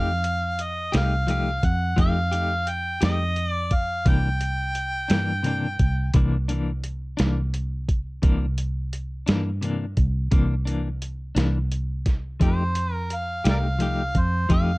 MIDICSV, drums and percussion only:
0, 0, Header, 1, 2, 480
1, 0, Start_track
1, 0, Tempo, 695249
1, 2808, Time_signature, 12, 3, 24, 8
1, 10204, End_track
2, 0, Start_track
2, 0, Title_t, "Drums"
2, 166, Note_on_c, 9, 42, 63
2, 235, Note_off_c, 9, 42, 0
2, 406, Note_on_c, 9, 42, 55
2, 475, Note_off_c, 9, 42, 0
2, 645, Note_on_c, 9, 42, 74
2, 654, Note_on_c, 9, 38, 94
2, 714, Note_off_c, 9, 42, 0
2, 723, Note_off_c, 9, 38, 0
2, 885, Note_on_c, 9, 42, 59
2, 954, Note_off_c, 9, 42, 0
2, 1126, Note_on_c, 9, 36, 69
2, 1127, Note_on_c, 9, 42, 56
2, 1195, Note_off_c, 9, 36, 0
2, 1196, Note_off_c, 9, 42, 0
2, 1366, Note_on_c, 9, 36, 96
2, 1366, Note_on_c, 9, 42, 70
2, 1435, Note_off_c, 9, 36, 0
2, 1435, Note_off_c, 9, 42, 0
2, 1606, Note_on_c, 9, 42, 53
2, 1675, Note_off_c, 9, 42, 0
2, 1843, Note_on_c, 9, 42, 48
2, 1912, Note_off_c, 9, 42, 0
2, 2082, Note_on_c, 9, 42, 75
2, 2091, Note_on_c, 9, 38, 104
2, 2151, Note_off_c, 9, 42, 0
2, 2160, Note_off_c, 9, 38, 0
2, 2321, Note_on_c, 9, 42, 43
2, 2390, Note_off_c, 9, 42, 0
2, 2560, Note_on_c, 9, 42, 53
2, 2562, Note_on_c, 9, 36, 68
2, 2629, Note_off_c, 9, 42, 0
2, 2631, Note_off_c, 9, 36, 0
2, 2801, Note_on_c, 9, 42, 68
2, 2802, Note_on_c, 9, 36, 93
2, 2870, Note_off_c, 9, 42, 0
2, 2871, Note_off_c, 9, 36, 0
2, 3042, Note_on_c, 9, 42, 61
2, 3111, Note_off_c, 9, 42, 0
2, 3279, Note_on_c, 9, 42, 53
2, 3348, Note_off_c, 9, 42, 0
2, 3519, Note_on_c, 9, 42, 75
2, 3527, Note_on_c, 9, 38, 89
2, 3588, Note_off_c, 9, 42, 0
2, 3596, Note_off_c, 9, 38, 0
2, 3758, Note_on_c, 9, 42, 55
2, 3827, Note_off_c, 9, 42, 0
2, 4000, Note_on_c, 9, 42, 54
2, 4001, Note_on_c, 9, 36, 66
2, 4069, Note_off_c, 9, 42, 0
2, 4071, Note_off_c, 9, 36, 0
2, 4236, Note_on_c, 9, 42, 75
2, 4241, Note_on_c, 9, 36, 92
2, 4305, Note_off_c, 9, 42, 0
2, 4310, Note_off_c, 9, 36, 0
2, 4480, Note_on_c, 9, 42, 57
2, 4549, Note_off_c, 9, 42, 0
2, 4720, Note_on_c, 9, 42, 53
2, 4789, Note_off_c, 9, 42, 0
2, 4961, Note_on_c, 9, 42, 75
2, 4970, Note_on_c, 9, 38, 97
2, 5030, Note_off_c, 9, 42, 0
2, 5039, Note_off_c, 9, 38, 0
2, 5204, Note_on_c, 9, 42, 52
2, 5273, Note_off_c, 9, 42, 0
2, 5445, Note_on_c, 9, 36, 71
2, 5446, Note_on_c, 9, 42, 55
2, 5514, Note_off_c, 9, 36, 0
2, 5515, Note_off_c, 9, 42, 0
2, 5682, Note_on_c, 9, 42, 64
2, 5684, Note_on_c, 9, 36, 86
2, 5751, Note_off_c, 9, 42, 0
2, 5753, Note_off_c, 9, 36, 0
2, 5922, Note_on_c, 9, 42, 62
2, 5991, Note_off_c, 9, 42, 0
2, 6165, Note_on_c, 9, 42, 53
2, 6234, Note_off_c, 9, 42, 0
2, 6404, Note_on_c, 9, 42, 69
2, 6412, Note_on_c, 9, 38, 93
2, 6473, Note_off_c, 9, 42, 0
2, 6481, Note_off_c, 9, 38, 0
2, 6645, Note_on_c, 9, 42, 56
2, 6714, Note_off_c, 9, 42, 0
2, 6883, Note_on_c, 9, 42, 47
2, 6885, Note_on_c, 9, 36, 66
2, 6952, Note_off_c, 9, 42, 0
2, 6954, Note_off_c, 9, 36, 0
2, 7122, Note_on_c, 9, 42, 67
2, 7125, Note_on_c, 9, 36, 96
2, 7191, Note_off_c, 9, 42, 0
2, 7194, Note_off_c, 9, 36, 0
2, 7368, Note_on_c, 9, 42, 54
2, 7437, Note_off_c, 9, 42, 0
2, 7607, Note_on_c, 9, 42, 50
2, 7676, Note_off_c, 9, 42, 0
2, 7846, Note_on_c, 9, 42, 78
2, 7854, Note_on_c, 9, 38, 98
2, 7915, Note_off_c, 9, 42, 0
2, 7923, Note_off_c, 9, 38, 0
2, 8089, Note_on_c, 9, 42, 51
2, 8158, Note_off_c, 9, 42, 0
2, 8325, Note_on_c, 9, 42, 55
2, 8326, Note_on_c, 9, 36, 66
2, 8333, Note_on_c, 9, 38, 30
2, 8394, Note_off_c, 9, 42, 0
2, 8395, Note_off_c, 9, 36, 0
2, 8402, Note_off_c, 9, 38, 0
2, 8566, Note_on_c, 9, 36, 88
2, 8567, Note_on_c, 9, 42, 69
2, 8635, Note_off_c, 9, 36, 0
2, 8636, Note_off_c, 9, 42, 0
2, 8804, Note_on_c, 9, 42, 64
2, 8873, Note_off_c, 9, 42, 0
2, 9046, Note_on_c, 9, 42, 55
2, 9115, Note_off_c, 9, 42, 0
2, 9288, Note_on_c, 9, 42, 78
2, 9297, Note_on_c, 9, 38, 92
2, 9357, Note_off_c, 9, 42, 0
2, 9366, Note_off_c, 9, 38, 0
2, 9528, Note_on_c, 9, 42, 52
2, 9597, Note_off_c, 9, 42, 0
2, 9768, Note_on_c, 9, 42, 52
2, 9769, Note_on_c, 9, 36, 66
2, 9837, Note_off_c, 9, 42, 0
2, 9838, Note_off_c, 9, 36, 0
2, 10009, Note_on_c, 9, 36, 97
2, 10009, Note_on_c, 9, 42, 70
2, 10078, Note_off_c, 9, 36, 0
2, 10078, Note_off_c, 9, 42, 0
2, 10204, End_track
0, 0, End_of_file